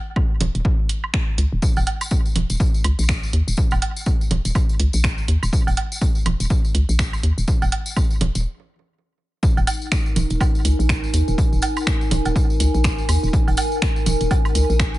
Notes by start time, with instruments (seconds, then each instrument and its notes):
0.16 kick, high woodblock
0.41 fm bass D#1, closed hi-hat, low conga
0.55 fm bass D#1, closed hi-hat
0.65 kick
0.89 closed hi-hat
1.04 high woodblock
1.14 finger snap, kick
1.38 fm bass C#2, closed hi-hat
1.52 fm bass D#1
1.62 kick, tambourine
1.76 fm bass D#1, tambourine, low woodblock
1.87 closed hi-hat, low woodblock
2.01 tambourine, high woodblock
2.11 kick, tambourine
2.25 tambourine
2.36 fm bass D#1, closed hi-hat, low conga
2.50 fm bass D#1, closed hi-hat, tambourine
2.60 kick, tambourine
2.74 tambourine
2.84 fm bass C#2, closed hi-hat, high woodblock
2.99 fm bass A#1, tambourine
3.09 finger snap, kick, tambourine
3.23 fm bass G#1, tambourine
3.33 fm bass D#2, closed hi-hat
3.48 fm bass D#1, tambourine
3.57 kick, tambourine
3.71 fm bass D#1, tambourine, high woodblock, low woodblock
3.82 closed hi-hat, low woodblock
3.96 tambourine
4.06 kick, tambourine
4.21 tambourine
4.31 fm bass D#1, closed hi-hat, low conga
4.45 fm bass D#1, closed hi-hat, tambourine
4.55 kick, tambourine, high woodblock
4.69 tambourine
4.80 fm bass C#2, closed hi-hat
4.93 fm bass A#1, tambourine
5.04 finger snap, kick, tambourine
5.18 fm bass G#1, tambourine
5.28 fm bass D#2, closed hi-hat
5.43 fm bass D#1, tambourine, high woodblock
5.53 kick, tambourine
5.67 fm bass D#1, tambourine, low woodblock
5.77 closed hi-hat, low woodblock
5.92 tambourine
6.01 kick, tambourine
6.15 tambourine
6.26 fm bass D#1, closed hi-hat, low conga, high woodblock
6.40 fm bass D#1, closed hi-hat, tambourine
6.50 kick, tambourine
6.65 tambourine
6.75 fm bass C#2, closed hi-hat
6.89 fm bass A#1, tambourine
6.99 finger snap, kick, tambourine
7.13 fm bass G#1, tambourine, high woodblock
7.23 fm bass D#2, closed hi-hat
7.38 fm bass D#1, tambourine
7.48 kick, tambourine
7.62 fm bass D#1, tambourine, low woodblock
7.72 closed hi-hat, low woodblock
7.86 tambourine
7.97 kick, tambourine, high woodblock
8.11 tambourine
8.21 fm bass D#1, closed hi-hat, low conga
8.35 fm bass D#1, closed hi-hat, tambourine
9.43 ambient pad D#4, kick, tambourine
9.57 fm bass D#1, tambourine, low woodblock
9.67 closed hi-hat, tambourine, low woodblock
9.78 ambient pad A#4, tambourine
9.92 finger snap, kick, tambourine
10.06 tambourine
10.16 fm bass D#1, closed hi-hat, tambourine, low conga
10.30 fm bass D#1, closed hi-hat, tambourine
10.41 ambient pad G#5, kick, tambourine, high woodblock, low woodblock
10.55 tambourine
10.65 fm bass C#2, closed hi-hat, tambourine
10.79 fm bass A#1, tambourine
10.89 finger snap, kick, tambourine
11.04 fm bass G#1, tambourine
11.14 fm bass D#2, closed hi-hat, tambourine
11.28 fm bass D#1, tambourine
11.38 kick, tambourine
11.53 fm bass D#1, tambourine
11.62 closed hi-hat, tambourine, low woodblock
11.76 tambourine, high woodblock
11.87 finger snap, kick, tambourine
12.01 tambourine
12.11 fm bass D#1, closed hi-hat, tambourine, low conga
12.25 fm bass D#1, closed hi-hat, tambourine, low woodblock
12.36 kick, tambourine
12.50 tambourine
12.60 fm bass C#2, closed hi-hat, tambourine
12.74 fm bass A#1, tambourine
12.84 finger snap, kick, tambourine
12.98 fm bass G#1, tambourine
13.09 fm bass D#2, closed hi-hat, tambourine, high woodblock
13.23 fm bass D#1, tambourine
13.33 kick, tambourine
13.48 fm bass D#1, tambourine, low woodblock
13.57 closed hi-hat, tambourine, low woodblock
13.72 tambourine
13.82 finger snap, kick, tambourine
13.96 tambourine
14.06 fm bass D#1, closed hi-hat, tambourine, low conga
14.21 fm bass D#1, closed hi-hat, tambourine
14.31 kick, tambourine, low woodblock
14.45 tambourine, high woodblock
14.55 fm bass C#2, closed hi-hat, tambourine
14.70 fm bass A#1, tambourine
14.80 finger snap, kick, tambourine
14.94 fm bass G#1, tambourine